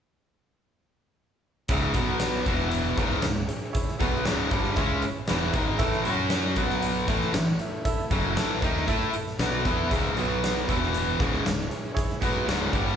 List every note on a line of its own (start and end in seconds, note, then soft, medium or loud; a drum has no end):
1.68 1.94 C#1 loud
1.68 1.95 C#2 loud
1.68 1.95 G#2 loud
1.68 1.96 C#3 loud
1.68 1.91 G#4 loud
1.68 1.91 C#5 medium
1.68 1.91 E5 loud
1.68 kick loud
1.68 closed hi-hat medium
1.94 2.43 B1 medium
1.94 2.46 B2 medium
1.94 2.47 F#3 medium
1.94 2.47 B3 medium
1.94 2.37 F#4 medium
1.94 2.47 F#4 medium
1.94 2.36 B4 medium
1.94 2.37 F#5 medium
1.94 2.47 F#5 medium
1.94 kick loud
1.94 closed hi-hat medium
2.20 snare loud
2.20 closed hi-hat medium
2.46 2.95 E1 medium
2.46 2.98 E2 medium
2.46 2.98 B2 loud
2.46 2.98 E3 medium
2.46 2.99 B3 medium
2.46 2.88 E4 medium
2.46 2.99 E4 medium
2.46 2.88 B4 medium
2.46 2.98 E5 medium
2.46 2.88 E5 medium
2.46 kick medium
2.46 closed hi-hat medium
2.59 snare soft
2.71 closed hi-hat medium
2.97 3.22 C#1 medium
2.97 3.23 C#2 medium
2.97 3.24 G#2 medium
2.97 3.24 C#3 loud
2.97 5.79 C#4 medium
2.97 3.39 E4 medium
2.97 3.39 G#4 medium
2.97 5.79 G#4 medium
2.97 3.39 C#5 medium
2.97 5.79 E5 medium
2.97 kick loud
2.97 closed hi-hat medium
3.10 snare soft
3.22 3.48 C#1 medium
3.22 3.45 C#2 medium
3.22 3.45 G#2 medium
3.22 snare loud
3.22 closed hi-hat medium
3.48 3.69 E4 medium
3.48 3.69 G#4 medium
3.48 3.70 C#5 medium
3.48 closed hi-hat medium
3.73 3.95 E4 loud
3.73 3.95 G#4 medium
3.73 3.95 C#5 loud
3.73 kick loud
3.73 closed hi-hat medium
3.88 snare soft
3.99 4.24 B1 medium
3.99 4.25 B2 medium
3.99 4.25 F#3 medium
3.99 4.26 B3 loud
3.99 4.21 E4 medium
3.99 4.21 G#4 medium
3.99 4.21 C#5 medium
3.99 kick loud
3.99 closed hi-hat medium
4.25 4.51 C#1 medium
4.25 4.51 C#2 loud
4.25 4.51 G#2 loud
4.25 4.51 C#3 loud
4.25 4.47 E4 medium
4.25 4.47 G#4 medium
4.25 4.47 C#5 medium
4.25 snare loud
4.25 closed hi-hat medium
4.51 4.76 G1 loud
4.51 4.77 G2 medium
4.51 4.76 D3 loud
4.51 4.77 G3 medium
4.51 4.72 E4 medium
4.51 4.73 G#4 medium
4.51 4.73 C#5 medium
4.51 kick loud
4.51 closed hi-hat medium
4.64 snare soft
4.76 5.01 C#2 medium
4.76 5.02 C#3 medium
4.76 5.03 G#3 medium
4.76 5.03 C#4 loud
4.76 4.98 E4 loud
4.76 4.98 G#4 loud
4.76 4.98 C#5 loud
4.76 kick loud
4.76 closed hi-hat medium
5.02 5.24 E4 medium
5.02 5.23 G#4 medium
5.02 5.24 C#5 medium
5.02 closed hi-hat medium
5.27 5.54 E1 medium
5.27 5.54 E2 medium
5.27 5.54 B2 loud
5.27 5.54 E3 loud
5.27 5.49 E4 medium
5.27 5.50 G#4 medium
5.27 5.49 C#5 medium
5.27 snare loud
5.27 closed hi-hat medium
5.53 5.78 G#1 loud
5.53 5.78 G#2 medium
5.53 5.78 D#3 medium
5.53 5.79 G#3 medium
5.53 5.74 E4 medium
5.53 5.74 G#4 medium
5.53 5.74 C#5 medium
5.53 kick loud
5.53 closed hi-hat medium
5.79 6.04 A1 loud
5.79 6.05 A2 loud
5.79 6.05 E3 loud
5.79 6.05 A3 loud
5.79 6.00 E4 loud
5.79 6.00 A4 loud
5.79 6.00 E5 loud
5.79 kick loud
5.79 closed hi-hat loud
5.92 snare soft
6.05 6.55 F#2 medium
6.05 6.56 F#3 medium
6.05 6.57 C#4 medium
6.05 6.47 F#4 medium
6.05 6.57 F#4 medium
6.05 6.47 C#5 medium
6.05 6.47 F#5 medium
6.05 6.58 F#5 medium
6.05 closed hi-hat medium
6.30 snare loud
6.30 closed hi-hat medium
6.56 7.05 B1 loud
6.56 7.08 B2 medium
6.56 7.08 F#3 loud
6.56 7.08 B3 loud
6.56 6.98 F#4 medium
6.56 7.09 F#4 medium
6.56 6.99 B4 medium
6.56 6.99 F#5 medium
6.56 kick medium
6.56 closed hi-hat medium
6.60 7.10 B3 medium
6.60 7.10 F#5 medium
6.70 snare soft
6.82 closed hi-hat medium
7.08 7.32 A1 loud
7.08 7.33 A2 medium
7.08 7.33 E3 medium
7.08 7.34 A3 loud
7.08 7.50 E4 medium
7.08 7.50 A4 medium
7.08 7.50 E5 loud
7.08 kick loud
7.08 closed hi-hat medium
7.13 9.90 A3 medium
7.13 9.91 E4 medium
7.13 9.90 E5 medium
7.21 snare soft
7.34 7.59 A1 medium
7.34 7.55 A2 medium
7.34 7.55 E3 medium
7.34 snare loud
7.34 closed hi-hat medium
7.59 7.81 E4 medium
7.59 7.81 A4 medium
7.59 7.81 E5 medium
7.59 closed hi-hat medium
7.85 8.06 E4 loud
7.85 8.06 A4 loud
7.85 8.06 E5 loud
7.85 kick loud
7.85 closed hi-hat loud
8.11 8.35 F#1 loud
8.11 8.36 F#2 medium
8.11 8.37 C#3 medium
8.11 8.37 F#3 medium
8.11 8.32 E4 medium
8.11 8.33 A4 medium
8.11 8.32 E5 medium
8.11 kick loud
8.11 closed hi-hat medium
8.36 8.61 A1 medium
8.36 8.62 A2 medium
8.36 8.62 E3 medium
8.36 8.62 A3 loud
8.36 8.58 E4 medium
8.36 8.58 A4 medium
8.36 8.58 E5 medium
8.36 snare loud
8.36 closed hi-hat medium
8.62 8.87 D#2 loud
8.62 8.88 D#3 medium
8.62 8.86 A#3 medium
8.62 8.88 D#4 medium
8.62 8.84 E4 medium
8.62 8.84 A4 medium
8.62 8.84 E5 medium
8.62 kick medium
8.62 closed hi-hat medium
8.76 snare soft
8.87 9.12 A2 medium
8.87 9.13 A3 medium
8.87 9.09 E4 loud
8.87 9.13 E4 medium
8.87 9.14 A4 loud
8.87 9.09 A4 loud
8.87 9.09 E5 loud
8.87 kick loud
8.87 closed hi-hat medium
9.14 9.35 E4 medium
9.14 9.35 A4 medium
9.14 9.35 E5 medium
9.14 closed hi-hat medium
9.27 snare soft
9.38 9.63 B1 medium
9.38 9.65 B2 medium
9.38 9.65 F#3 medium
9.38 9.65 B3 loud
9.38 9.61 E4 medium
9.38 9.61 A4 medium
9.38 9.61 E5 medium
9.38 snare loud
9.38 closed hi-hat medium
9.65 9.89 E2 loud
9.65 9.91 E3 medium
9.65 9.91 B3 medium
9.65 9.86 E4 medium
9.65 9.91 E4 medium
9.65 9.86 A4 medium
9.65 9.86 E5 medium
9.65 kick loud
9.65 closed hi-hat medium
9.90 10.15 C#1 medium
9.90 10.15 C#2 loud
9.90 10.16 G#2 loud
9.90 10.17 C#3 loud
9.90 10.11 G#4 loud
9.90 10.12 C#5 loud
9.90 10.11 E5 loud
9.90 kick loud
9.90 closed hi-hat medium
10.16 10.64 B1 medium
10.16 10.67 B2 medium
10.16 10.67 F#3 medium
10.16 10.68 B3 medium
10.16 10.66 B3 medium
10.16 10.57 F#4 medium
10.16 10.68 F#4 medium
10.16 10.58 B4 medium
10.16 10.57 F#5 medium
10.16 10.68 F#5 medium
10.16 closed hi-hat medium
10.44 snare loud
10.44 closed hi-hat medium
10.67 11.16 E1 medium
10.67 11.19 E2 medium
10.67 11.19 B2 medium
10.67 11.19 E3 loud
10.67 11.18 B3 medium
10.67 11.16 E4 medium
10.67 11.09 E4 medium
10.67 11.10 B4 medium
10.67 11.18 E5 medium
10.67 11.10 E5 loud
10.67 kick medium
10.67 closed hi-hat medium
10.83 snare soft
10.94 closed hi-hat medium
11.17 11.43 C#1 medium
11.17 11.45 C#2 medium
11.17 11.45 G#2 medium
11.17 12.96 G#3 medium
11.17 12.96 E4 medium
11.17 11.60 E4 medium
11.17 11.60 G#4 medium
11.17 12.96 C#5 medium
11.17 11.60 C#5 medium
11.17 kick loud
11.17 closed hi-hat medium
11.21 11.45 C#3 medium
11.34 snare soft
11.45 11.69 C#1 medium
11.45 11.66 C#2 medium
11.45 11.66 G#2 medium
11.45 snare loud
11.45 closed hi-hat medium
11.69 11.91 E4 medium
11.69 11.91 G#4 medium
11.69 11.91 C#5 medium
11.69 closed hi-hat medium
11.94 12.16 E4 loud
11.94 12.16 G#4 loud
11.94 12.16 C#5 loud
11.94 kick loud
11.94 closed hi-hat loud
12.10 snare soft
12.20 12.46 B1 medium
12.20 12.47 B2 medium
12.20 12.48 F#3 medium
12.20 12.41 E4 medium
12.20 12.42 G#4 medium
12.20 12.42 C#5 medium
12.20 kick medium
12.20 closed hi-hat medium
12.25 12.48 B3 loud
12.45 12.72 C#1 medium
12.45 12.72 C#2 medium
12.45 12.73 G#2 loud
12.45 12.67 E4 medium
12.45 12.67 G#4 medium
12.45 12.67 C#5 medium
12.45 closed hi-hat medium
12.49 12.73 C#3 loud
12.49 snare loud
12.73 12.96 G1 loud
12.73 12.96 G2 medium
12.73 12.96 D3 medium
12.73 12.96 G3 medium
12.73 12.94 E4 medium
12.73 12.94 G#4 medium
12.73 12.94 C#5 medium
12.73 kick loud
12.73 closed hi-hat medium
12.87 snare soft